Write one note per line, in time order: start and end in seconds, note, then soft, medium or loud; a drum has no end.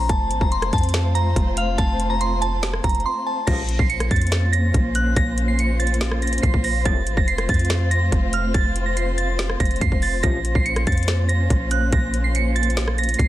0.09 0.32 F1 loud
0.09 3.44 A3 medium
0.09 3.44 C4 medium
0.09 3.44 F4 medium
0.09 3.44 C5 medium
0.09 0.39 A5 loud
0.09 kick loud
0.09 closed hi-hat medium
0.31 0.41 A1 medium
0.31 closed hi-hat medium
0.41 0.72 F1 loud
0.41 0.50 A#5 medium
0.41 kick loud
0.52 0.68 C6 medium
0.52 closed hi-hat medium
0.62 cross-stick loud
0.62 closed hi-hat medium
0.73 1.34 F2 loud
0.73 1.13 A5 medium
0.73 kick loud
0.73 closed hi-hat medium
0.78 closed hi-hat medium
0.83 closed hi-hat medium
0.89 closed hi-hat medium
0.94 snare loud
0.94 closed hi-hat medium
1.15 1.55 A#5 medium
1.15 closed hi-hat medium
1.36 1.77 F1 loud
1.36 kick medium
1.36 closed hi-hat medium
1.57 1.74 F5 medium
1.57 closed hi-hat medium
1.78 2.80 F1 loud
1.78 2.08 A5 loud
1.78 kick loud
1.78 closed hi-hat medium
2.00 closed hi-hat medium
2.10 2.18 A#5 medium
2.21 2.37 C6 medium
2.21 closed hi-hat medium
2.42 2.81 A5 medium
2.42 closed hi-hat medium
2.63 snare loud
2.63 closed hi-hat medium
2.73 cross-stick loud
2.84 3.04 F1 loud
2.84 3.00 A#5 medium
2.84 kick loud
2.84 closed hi-hat medium
2.89 closed hi-hat medium
2.95 closed hi-hat medium
3.00 closed hi-hat soft
3.06 3.22 C6 medium
3.27 3.43 A5 medium
3.47 3.78 A#1 loud
3.47 3.61 C#2 loud
3.47 3.61 C3 loud
3.47 3.61 F3 loud
3.47 6.82 A#3 medium
3.47 6.82 C#4 medium
3.47 13.28 F4 medium
3.47 13.28 C5 medium
3.47 3.77 A#6 loud
3.47 kick loud
3.47 closed hi-hat medium
3.47 crash loud
3.69 closed hi-hat medium
3.79 4.10 A#1 loud
3.79 3.88 C7 medium
3.79 kick loud
3.90 4.06 C#7 medium
3.90 closed hi-hat medium
4.00 cross-stick loud
4.00 closed hi-hat medium
4.11 4.72 F2 loud
4.11 4.51 A6 medium
4.11 kick loud
4.11 closed hi-hat medium
4.16 closed hi-hat medium
4.21 closed hi-hat medium
4.27 closed hi-hat medium
4.32 snare loud
4.32 closed hi-hat medium
4.53 4.93 A#6 medium
4.53 closed hi-hat medium
4.74 5.15 A#1 loud
4.74 kick loud
4.74 closed hi-hat medium
4.95 5.12 F#6 medium
4.95 closed hi-hat medium
5.16 6.39 A#1 loud
5.16 5.46 A#6 loud
5.16 kick loud
5.16 closed hi-hat medium
5.38 closed hi-hat medium
5.48 5.56 C7 medium
5.59 5.76 C#7 medium
5.59 closed hi-hat medium
5.80 6.19 A6 medium
5.80 closed hi-hat medium
5.87 closed hi-hat medium
5.94 closed hi-hat medium
6.01 snare loud
6.01 closed hi-hat medium
6.11 cross-stick loud
6.22 6.39 A#6 medium
6.22 closed hi-hat soft
6.27 closed hi-hat medium
6.33 closed hi-hat medium
6.38 closed hi-hat medium
6.43 6.53 A#1 loud
6.43 6.59 C7 medium
6.43 kick loud
6.43 closed hi-hat medium
6.54 6.84 A#1 loud
6.54 kick medium
6.64 6.81 A#6 medium
6.64 open hi-hat medium
6.85 6.99 C2 loud
6.85 6.99 A2 loud
6.85 6.99 F3 loud
6.85 10.20 A3 medium
6.85 10.20 C4 medium
6.85 7.15 A6 loud
6.85 kick loud
6.85 closed hi-hat medium
7.07 7.17 A1 loud
7.07 closed hi-hat medium
7.17 7.48 F1 loud
7.17 7.26 A#6 medium
7.17 kick loud
7.28 7.44 C7 medium
7.28 closed hi-hat medium
7.38 cross-stick loud
7.38 closed hi-hat medium
7.49 8.10 F2 loud
7.49 7.89 A6 medium
7.49 kick loud
7.49 closed hi-hat medium
7.54 closed hi-hat medium
7.59 closed hi-hat medium
7.65 closed hi-hat medium
7.70 snare loud
7.70 closed hi-hat medium
7.91 8.31 A#6 medium
7.91 closed hi-hat medium
8.12 8.53 F1 loud
8.12 kick medium
8.12 closed hi-hat medium
8.33 8.50 F6 medium
8.33 closed hi-hat medium
8.54 9.56 F1 loud
8.54 8.84 A6 loud
8.54 kick loud
8.54 closed hi-hat medium
8.76 closed hi-hat medium
8.86 8.94 A#6 medium
8.97 9.13 C7 medium
8.97 closed hi-hat medium
9.18 9.57 A6 medium
9.18 closed hi-hat medium
9.39 snare loud
9.39 closed hi-hat medium
9.50 cross-stick loud
9.60 9.80 F1 loud
9.60 9.77 A#6 medium
9.60 kick loud
9.60 closed hi-hat medium
9.65 closed hi-hat medium
9.71 closed hi-hat medium
9.76 closed hi-hat soft
9.81 9.91 F2 loud
9.81 9.98 C7 medium
9.81 kick loud
9.81 closed hi-hat medium
9.92 10.22 F1 loud
9.92 kick medium
10.02 10.19 A6 medium
10.02 open hi-hat medium
10.23 10.54 A#1 loud
10.23 10.37 C#2 loud
10.23 10.37 C3 medium
10.23 10.37 F3 loud
10.23 13.28 A#3 medium
10.23 13.28 C#4 medium
10.23 10.53 A#6 loud
10.23 kick loud
10.23 closed hi-hat medium
10.45 closed hi-hat medium
10.55 10.86 A#1 loud
10.55 10.64 C7 medium
10.55 kick loud
10.66 10.82 C#7 medium
10.66 closed hi-hat medium
10.76 cross-stick loud
10.76 closed hi-hat medium
10.87 11.48 F2 loud
10.87 11.27 A6 medium
10.87 kick loud
10.87 closed hi-hat medium
10.92 closed hi-hat medium
10.97 closed hi-hat medium
11.03 closed hi-hat medium
11.08 snare loud
11.08 closed hi-hat medium
11.29 11.69 A#6 medium
11.29 closed hi-hat medium
11.50 11.91 A#1 loud
11.50 kick loud
11.50 closed hi-hat medium
11.71 11.88 F#6 medium
11.71 closed hi-hat medium
11.92 13.15 A#1 loud
11.92 12.22 A#6 loud
11.92 kick loud
11.92 closed hi-hat medium
12.14 closed hi-hat medium
12.24 12.32 C7 medium
12.35 12.52 C#7 medium
12.35 closed hi-hat medium
12.56 12.95 A6 medium
12.56 closed hi-hat medium
12.63 closed hi-hat medium
12.70 closed hi-hat medium
12.77 snare loud
12.77 closed hi-hat medium
12.88 cross-stick loud
12.98 13.15 A#6 medium
12.98 closed hi-hat soft
13.03 closed hi-hat medium
13.09 closed hi-hat medium
13.14 closed hi-hat medium
13.19 13.28 A#1 loud
13.19 13.28 C7 medium
13.19 kick loud
13.19 closed hi-hat medium